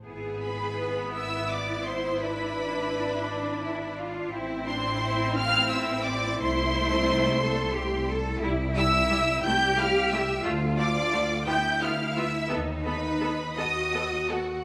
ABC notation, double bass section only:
X:1
M:6/8
L:1/8
Q:3/8=58
K:Am
V:1 name="Double bass section" clef=bass
^G,,,6- | ^G,,,6 | A,,,6 | C,,6 |
C,,3 C,,3 | D,,3 D,,3 | ^D,,3 D,,3 |]